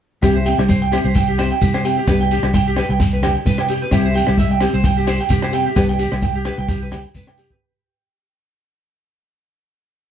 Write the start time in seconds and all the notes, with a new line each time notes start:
0.22 C2 E3 C4 E4 G4, kick, cross-stick, muted conga, low agogo, shekere
0.36 C5
0.45 C4 E4 G4 G5, closed hi-hat, shekere
0.58 C2 G4, cross-stick, low agogo
0.69 C5, kick, high conga, shekere
0.82 G5
0.92 C4 E4 G4, cross-stick, closed hi-hat, muted conga, low agogo, shekere
1.04 C2 C5
1.15 G5, kick, muted conga, high conga, shekere
1.28 G4
1.38 C4 E4 G4 C5, cross-stick, closed hi-hat, low agogo, shekere
1.52 G5
1.61 C3 G4, kick, high conga, shekere
1.74 C5, cross-stick, low agogo
1.85 C4 E4 G4 G5, closed hi-hat, shekere
1.97 G4
2.07 C2 B3 D4 G4 B4, kick, cross-stick, low agogo, shekere
2.21 G5
2.31 D4 G4, closed hi-hat, shekere
2.43 C2, cross-stick, low agogo
2.54 G5, kick, high conga, shekere
2.68 G4
2.76 D4 G4 B4, cross-stick, closed hi-hat, low agogo, shekere
2.89 C2 G5
3.00 muted clean electric guitar stroke, kick, muted conga, low conga, shekere
3.13 B4
3.23 D4 G4 G5, cross-stick, closed hi-hat, muted conga, low conga, low agogo, shekere
3.45 C3 B4, kick, high conga, shekere
3.58 G5, cross-stick, low agogo
3.68 D4 G4, closed hi-hat, shekere
3.82 B4
3.91 C2 E3 C4 E4 G4, kick, cross-stick, low agogo, shekere
4.06 C5
4.14 C4 E4 G4 G5, closed hi-hat, shekere
4.27 C2 G4, cross-stick, low agogo
4.37 E5, kick, high conga, shekere
4.51 G5
4.61 C4 G4, cross-stick, closed hi-hat, low agogo, shekere
4.73 C2 C5
4.83 G5, kick, muted conga, high conga, shekere
4.97 G4
5.06 G4 C5, muted nylon-string guitar stroke, cross-stick, closed hi-hat, muted conga, low agogo, shekere
5.21 G5
5.29 C3 G4, kick, high conga, shekere
5.42 C5, cross-stick, low agogo
5.52 C4 E4 G4 G5, closed hi-hat, shekere
5.66 G4
5.75 C2 B3 D4 G4 B4, kick, cross-stick, low agogo, shekere
5.89 G5
5.99 D4 G4, closed hi-hat, shekere
6.12 C2, cross-stick, low agogo
6.22 G5, kick, high conga, shekere
6.36 G4
6.45 D4 G4 B4, cross-stick, closed hi-hat, muted conga, low agogo, shekere
6.58 C2 G5
6.69 G4, kick, muted conga, low conga, shekere
6.83 B4
6.92 D4 G4 G5, cross-stick, closed hi-hat, muted conga, low conga, low agogo, shekere
7.15 C3 B4, kick, high conga, shekere
7.27 G5, cross-stick, low agogo
7.38 D4 G4, closed hi-hat, shekere
7.50 B4, kick